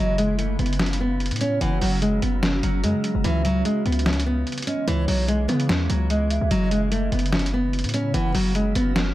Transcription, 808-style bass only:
0.00 0.57 F#1 loud
0.59 1.33 F#1 loud
1.31 1.60 A2 loud
1.61 1.81 F#1 loud
1.82 2.21 F#1 loud
2.22 2.62 F#1 loud
2.63 2.85 F#1 loud
2.84 2.94 F#2 loud
3.15 3.24 F#1 loud
3.24 3.64 C#2 loud
3.86 4.44 C#2 loud
4.88 5.07 C#2 loud
5.08 5.47 B1 loud
5.49 5.71 C#3 loud
5.69 5.89 E2 loud
5.90 6.39 C#2 loud
6.41 6.50 C#2 loud
6.51 7.10 F#1 loud
7.12 7.86 F#1 loud
7.84 8.13 A2 loud
8.14 8.34 F#1 loud
8.35 8.74 F#1 loud
8.75 9.14 F#1 loud

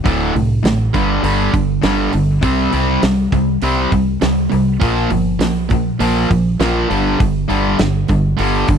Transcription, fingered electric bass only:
0.06 0.30 D1 medium
0.35 0.60 C2 medium
0.64 0.89 A1 medium
0.94 1.19 G1 medium
1.23 1.48 G1 medium
1.54 1.78 G1 medium
1.83 2.08 G1 medium
2.13 2.38 G1 medium
2.43 2.68 C2 medium
2.73 2.98 C2 medium
3.03 3.27 C2 medium
3.32 3.57 C2 medium
3.62 3.87 C2 medium
3.92 4.17 C2 medium
4.22 4.47 C2 medium
4.53 4.77 C2 medium
4.82 5.06 A#1 medium
5.10 5.35 G1 medium
5.39 5.89 A#1 medium
6.00 6.25 A#1 medium
6.31 6.55 A#1 medium
6.59 6.84 A#1 medium
6.90 7.15 G1 medium
7.21 7.45 G1 medium
7.50 7.74 G1 medium
7.79 8.04 G1 medium
8.10 8.34 G1 medium
8.39 8.64 G1 medium
8.69 8.78 G1 medium

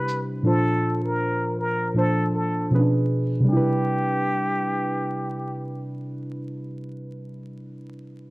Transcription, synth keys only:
0.00 0.26 C3 medium
0.00 0.27 G3 medium
0.00 0.27 D4 medium
0.00 0.28 E4 medium
0.00 0.28 G4 medium
0.43 1.78 A#2 medium
0.43 1.79 F3 medium
0.43 1.79 D4 medium
0.43 1.80 F4 medium
0.47 1.80 C5 medium
1.94 2.71 A#2 medium
1.94 2.70 F3 medium
1.94 2.72 D4 medium
1.94 2.73 A4 medium
1.98 2.73 C5 medium
2.70 3.39 B2 medium
2.70 3.39 F3 medium
2.70 2.80 C#4 medium
2.70 3.40 G#4 medium
2.75 3.41 B4 medium
2.79 3.43 D4 medium
3.40 7.47 C3 medium
3.44 7.51 G3 medium
3.49 7.55 D4 medium
3.49 7.59 E4 medium
3.57 7.63 B4 medium

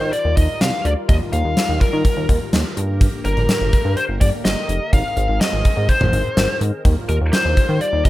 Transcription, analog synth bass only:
0.01 0.11 D#3 loud
0.25 0.35 D#2 medium
0.37 0.47 D#2 medium
0.61 0.71 C2 medium
0.85 0.95 D2 medium
1.09 1.19 D#2 loud
1.33 1.43 D#2 loud
1.45 1.55 D#2 loud
1.69 1.79 D#2 loud
1.93 2.03 D#3 medium
2.17 2.27 D#2 medium
2.29 2.39 D#2 loud
2.53 2.63 D#2 loud
2.77 3.08 G2 loud
3.25 3.35 G1 loud
3.37 3.47 G1 medium
3.61 3.71 G1 loud
3.85 3.95 G2 loud
4.09 4.19 G1 medium
4.21 4.31 G1 medium
4.45 4.55 G1 medium
4.69 4.79 F1 medium
4.93 5.03 G#1 loud
5.17 5.27 G#1 loud
5.29 5.39 G#1 loud
5.53 5.63 G#1 loud
5.77 5.87 G#2 medium
6.01 6.11 G#1 medium
6.13 6.23 G#1 loud
6.37 6.47 G#1 loud
6.61 6.71 G#2 loud
6.85 6.95 D#2 loud
7.09 7.19 D#2 loud
7.21 7.31 D#2 loud
7.45 7.55 D#2 loud
7.69 7.79 D#3 medium
7.93 8.03 D#2 loud
8.05 8.09 D#2 medium

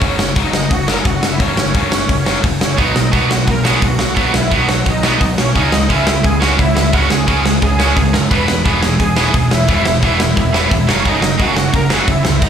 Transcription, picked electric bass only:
0.01 0.16 F#1 medium
0.18 0.33 F#1 medium
0.36 0.66 F#1 medium
0.71 1.01 F#1 medium
1.05 1.20 F#1 medium
1.21 1.37 F#1 medium
1.40 1.55 F#1 medium
1.56 1.72 F#1 medium
1.74 2.04 F#1 medium
2.09 2.39 F#1 medium
2.44 2.59 F#1 medium
2.60 2.75 F#1 medium
2.78 2.93 B1 medium
2.94 3.10 B1 medium
3.13 3.43 B1 medium
3.47 3.77 B1 medium
3.82 3.97 B1 medium
4.00 4.14 B1 medium
4.17 4.32 B1 medium
4.34 4.49 B1 medium
4.52 4.81 B1 medium
4.86 5.16 B1 medium
5.21 5.35 B1 medium
5.37 5.56 B1 medium
5.56 5.70 C#2 medium
5.72 5.87 C#2 medium
5.90 6.20 C#2 medium
6.25 6.54 C#2 loud
6.59 6.74 C#2 medium
6.76 6.91 C#2 medium
6.93 7.08 C#2 medium
7.10 7.25 C#2 medium
7.28 7.57 C#2 medium
7.62 7.92 C#2 medium
7.96 8.11 C#2 medium
8.14 8.29 F#2 medium
8.31 8.46 E1 medium
8.49 8.63 E1 medium
8.65 8.95 E1 medium
9.00 9.29 E1 medium
9.34 9.49 E1 medium
9.52 9.66 E1 medium
9.68 9.83 E1 loud
9.85 10.00 E1 medium
10.03 10.32 E1 medium
10.37 10.67 E1 medium
10.71 10.86 E1 medium
10.88 11.03 F#1 medium
11.06 11.20 F#1 medium
11.21 11.36 F#1 medium
11.40 11.69 F#1 medium
11.74 12.03 F#1 medium
12.08 12.23 F#1 medium
12.24 12.39 C#2 medium

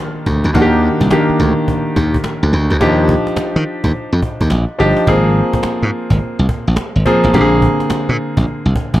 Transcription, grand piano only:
0.00 0.54 D#3 medium
0.00 0.54 A#3 medium
0.00 0.55 D4 medium
0.00 2.81 D#4 medium
0.00 2.83 F4 medium
0.00 0.62 G4 medium
0.54 1.01 D#3 medium
0.54 1.02 A#3 medium
0.54 1.02 D4 medium
0.54 0.63 F#4 medium
0.62 1.05 G4 loud
1.11 1.99 D#3 medium
1.11 2.00 A#3 medium
1.11 2.00 D4 medium
1.11 2.00 G4 medium
2.80 3.69 F3 medium
2.80 3.69 D4 medium
2.80 3.69 D#4 medium
2.80 3.69 G4 medium
4.79 5.02 F3 medium
4.79 5.03 D4 medium
4.79 5.03 D#4 medium
4.79 5.03 G4 loud
5.07 5.96 F3 medium
5.07 5.96 A#3 medium
5.07 5.96 C4 medium
5.07 5.96 G#4 loud
7.05 7.29 F3 medium
7.05 7.29 A#3 medium
7.05 7.30 C4 medium
7.05 7.30 G#4 loud
7.33 8.22 D3 medium
7.33 8.22 A#3 medium
7.33 8.22 C4 medium
7.33 7.42 G4 medium
7.41 8.25 G#4 loud

